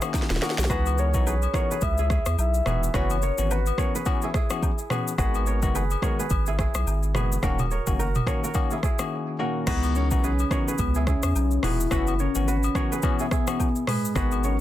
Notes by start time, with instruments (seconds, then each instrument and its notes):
Already playing: kora E4 F#4 G#4 A#4 C#5
0.02 tine electric piano D#3 A#3 C#4 F#4, cross-stick, high agogo, shaker
0.14 kick, snare, low woodblock, shaker
0.22 snare
0.30 sub bass D#1, snare, shaker
0.36 snare
0.42 tine electric piano D#3 A#3 C#4 F#4, kora F#4 A#4, snare, high agogo, shaker
0.50 snare
0.58 sub bass B1, snare, shaker
0.64 snare
0.70 sub bass C#2, tine electric piano E3 B3 D#4 F#4, kora G#4 B4, soft synth lead B4, kick, cross-stick, shaker
0.86 high agogo, shaker
0.98 kora A#4 C#5, soft synth lead C#5, shaker
1.14 sub bass B1, tine electric piano E3 B3 D#4 F#4, kick, shaker
1.27 kora G#4 B4, low woodblock, shaker
1.42 high agogo, shaker
1.54 tine electric piano E3 B3 D#4 F#4, kora A#4 C#5, kick, cross-stick, shaker
1.71 kora G#4 B4, shaker
1.81 sub bass C#2, soft synth lead E5, kick, high agogo, shaker
1.98 kora E4 G#4, shaker
2.10 kora E4 G#4, kick, cross-stick, shaker
2.26 sub bass E2, cross-stick, high agogo, shaker
2.38 sub bass B1, soft synth lead E5, low woodblock, shaker
2.54 shaker
2.66 sub bass E1, tine electric piano E3 B3 D#4 F#4, kora G#4 B4, cross-stick, mid tom, high agogo, shaker
2.83 shaker
2.94 sub bass F#1, tine electric piano E3 B3 C#4 F#4, kora F#4 B4, soft synth lead C#5, kick, cross-stick, shaker
3.10 high agogo, shaker
3.22 kora A#4 C#5, shaker
3.38 sub bass G#1, tine electric piano E3 B3 C#4 F#4, shaker
3.51 kora F#4 B4, soft synth lead B4, low woodblock, shaker
3.66 high agogo, shaker
3.78 tine electric piano E3 B3 C#4 F#4, kora A#4 C#5, kick, cross-stick, shaker
3.95 kora G#4 B4, shaker
4.05 tine electric piano E3 B3 C#4 F#4, kick, high agogo, shaker
4.22 kora E4 G#4, shaker
4.34 kora E4 G#4, kick, cross-stick, shaker
4.50 tine electric piano E3 B3 C#4 F#4, cross-stick, high agogo, shaker
4.63 kick, low woodblock, shaker
4.78 shaker
4.90 tine electric piano E3 B3 C#4 F#4, kora G#4 B4, cross-stick, mid tom, high agogo, shaker
5.08 shaker
5.18 sub bass G#1, tine electric piano D#3 G#3 B3 F#4, kora G#4 B4, kick, cross-stick, shaker
5.34 high agogo, shaker
5.46 kora A#4 C#5, shaker
5.62 sub bass F#1, tine electric piano D#3 G#3 B3 F#4, kick, shaker
5.75 kora G#4 B4, low woodblock, shaker
5.90 high agogo, shaker
6.02 tine electric piano D#3 G#3 B3 F#4, kora A#4 C#5, kick, cross-stick, shaker
6.19 kora G#4 B4, shaker
6.30 sub bass G#1, kick, high agogo, shaker
6.46 kora E4 G#4, shaker
6.59 kora E4 G#4, kick, cross-stick, shaker
6.74 sub bass B1, cross-stick, high agogo, shaker
6.87 sub bass G#1, low woodblock, shaker
7.03 shaker
7.14 sub bass F#1, tine electric piano D#3 G#3 B3 F#4, kora G#4 B4, cross-stick, mid tom, high agogo, shaker
7.32 shaker
7.42 sub bass D#1, tine electric piano D#3 A#3 C#4 F#4, kora F#4 A#4, kick, cross-stick, shaker
7.59 mid tom, high agogo, shaker
7.71 kora A#4 C#5, shaker
7.87 sub bass F#1, tine electric piano D#3 A#3 C#4 F#4, kick, shaker
7.99 kora F#4 A#4, low woodblock, shaker
8.15 mid tom, high agogo, shaker
8.27 tine electric piano D#3 A#3 C#4 F#4, kora A#4 C#5, kick, cross-stick, shaker
8.44 kora F#4 A#4, shaker
8.54 tine electric piano D#3 A#3 C#4 F#4, kick, high agogo, shaker
8.71 kora E4 G#4, shaker
8.83 kora E4 G#4, kick, cross-stick, shaker
8.99 tine electric piano D#3 A#3 C#4 F#4, cross-stick, high agogo, shaker
9.39 tine electric piano D#3 A#3 C#4 F#4, soft synth lead A#3, kora F#4 A#4
9.67 sub bass C#2, tine electric piano E3 B3 D#4 F#4, soft synth lead B3, kora G#4 B4, kick, cross-stick, crash, shaker
9.83 high agogo, shaker
9.95 soft synth lead C#4, kora A#4 C#5, shaker
10.11 sub bass B1, tine electric piano E3 B3 D#4 F#4, kick, shaker
10.24 soft synth lead C#4, kora G#4 B4, shaker
10.39 high agogo, shaker
10.51 tine electric piano E3 B3 D#4 F#4, soft synth lead C#4, kora A#4 C#5, kick, cross-stick, shaker
10.68 kora G#4 B4, shaker
10.78 sub bass C#2, soft synth lead B3, kick, high agogo, shaker
10.95 kora E4 G#4, shaker
11.07 soft synth lead C#4, kora E4 G#4, kick, cross-stick, shaker
11.23 sub bass E2, cross-stick, high agogo, shaker
11.35 sub bass B1, soft synth lead C#4, low woodblock, shaker
11.51 shaker
11.63 sub bass E1, tine electric piano E3 B3 D#4 F#4, soft synth lead E4, kora G#4 B4, cross-stick, mid tom, open hi-hat, high agogo, shaker
11.80 shaker
11.91 sub bass F#1, tine electric piano E3 B3 C#4 F#4, kora F#4 B4, kick, cross-stick, shaker
12.07 high agogo, shaker
12.19 soft synth lead C#4, kora A#4 C#5, shaker
12.35 sub bass G#1, tine electric piano E3 B3 C#4 F#4, shaker
12.48 kora F#4 B4, shaker
12.63 high agogo, shaker
12.75 tine electric piano E3 B3 C#4 F#4, kora A#4 C#5, kick, cross-stick, shaker
12.92 kora G#4 B4, shaker
13.02 tine electric piano E3 B3 C#4 F#4, soft synth lead B3, kick, high agogo, shaker
13.19 kora E4 G#4, shaker
13.31 soft synth lead B3, kora E4 G#4, kick, cross-stick, shaker
13.47 tine electric piano E3 B3 C#4 F#4, cross-stick, high agogo, shaker
13.60 kick, low woodblock, shaker
13.76 shaker
13.87 soft synth lead G#3, kora G#4 B4, cross-stick, mid tom, open hi-hat, high agogo, shaker
14.05 shaker
14.15 sub bass G#1, tine electric piano D#3 G#3 B3 F#4, soft synth lead B3, kora G#4 B4, kick, cross-stick, shaker
14.31 high agogo, shaker
14.44 soft synth lead C#4, kora A#4 C#5, shaker